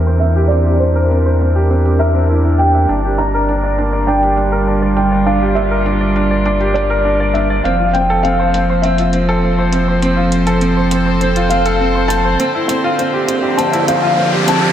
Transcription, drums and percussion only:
0.22 closed hi-hat
0.52 closed hi-hat
0.82 closed hi-hat
1.11 closed hi-hat
1.41 closed hi-hat
1.71 closed hi-hat
1.85 closed hi-hat
2.00 closed hi-hat
2.59 closed hi-hat
2.89 closed hi-hat
3.19 closed hi-hat
3.49 closed hi-hat
3.79 closed hi-hat
4.08 closed hi-hat
4.23 closed hi-hat
4.37 closed hi-hat
4.97 closed hi-hat
5.27 closed hi-hat
5.56 closed hi-hat
5.86 closed hi-hat
6.16 closed hi-hat
6.46 closed hi-hat
6.61 closed hi-hat
6.76 closed hi-hat
7.35 closed hi-hat
7.65 closed hi-hat
7.95 closed hi-hat
8.25 closed hi-hat
8.54 closed hi-hat
8.83 closed hi-hat
8.98 closed hi-hat
9.13 closed hi-hat
9.72 closed hi-hat
10.02 closed hi-hat
10.32 closed hi-hat
10.47 closed hi-hat
10.61 closed hi-hat
10.91 closed hi-hat
11.21 closed hi-hat
11.36 closed hi-hat
11.51 closed hi-hat
11.66 closed hi-hat
12.10 closed hi-hat
12.40 closed hi-hat
12.69 closed hi-hat
12.99 closed hi-hat
13.28 closed hi-hat
13.59 closed hi-hat
13.73 closed hi-hat
13.88 closed hi-hat
14.48 closed hi-hat

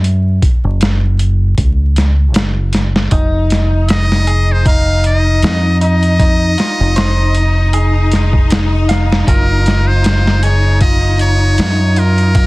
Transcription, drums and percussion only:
0.04 closed hi-hat
0.42 kick, closed hi-hat
0.81 snare, closed hi-hat
1.19 closed hi-hat
1.58 kick, closed hi-hat
1.96 snare, closed hi-hat
2.34 snare, closed hi-hat
2.73 snare, closed hi-hat
2.96 snare
3.11 kick, closed hi-hat
3.50 snare, closed hi-hat
3.89 snare, closed hi-hat
4.12 snare
4.27 closed hi-hat
4.66 kick, closed hi-hat
5.04 closed hi-hat
5.42 snare, closed hi-hat
5.81 closed hi-hat
6.03 closed hi-hat
6.20 kick, closed hi-hat
6.58 snare, closed hi-hat
6.96 snare, closed hi-hat
7.34 closed hi-hat
7.73 closed hi-hat
8.12 snare, closed hi-hat
8.33 kick
8.50 snare, closed hi-hat
8.89 snare, closed hi-hat
9.12 snare
9.27 kick, closed hi-hat
9.66 snare, closed hi-hat
10.04 snare, closed hi-hat
10.27 snare
10.43 closed hi-hat
10.81 kick, closed hi-hat
11.19 closed hi-hat
11.58 snare, closed hi-hat
11.96 closed hi-hat
12.18 closed hi-hat
12.35 kick, closed hi-hat

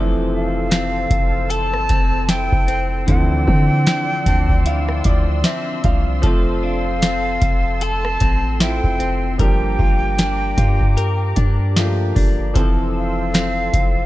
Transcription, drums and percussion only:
0.71 snare, closed hi-hat
1.10 kick, closed hi-hat
1.50 closed hi-hat
1.74 cross-stick
1.89 kick, closed hi-hat
2.29 snare, closed hi-hat
2.52 kick
2.68 closed hi-hat
3.08 kick, closed hi-hat
3.48 kick
3.87 snare, closed hi-hat
4.26 kick, closed hi-hat
4.49 kick
4.66 closed hi-hat
4.89 cross-stick
5.04 kick, closed hi-hat
5.44 snare, closed hi-hat
5.84 kick, closed hi-hat
6.23 kick, closed hi-hat
7.02 snare, closed hi-hat
7.42 kick, closed hi-hat
7.81 closed hi-hat
8.05 cross-stick
8.20 kick, closed hi-hat
8.60 snare, closed hi-hat
8.84 kick
9.00 closed hi-hat
9.39 kick, closed hi-hat
9.79 kick
10.19 snare, closed hi-hat
10.58 kick, closed hi-hat
10.81 kick
10.98 closed hi-hat
11.36 kick, closed hi-hat
11.76 snare, closed hi-hat
12.16 kick, open hi-hat
12.55 kick, closed hi-hat
13.34 snare, closed hi-hat
13.73 kick, closed hi-hat

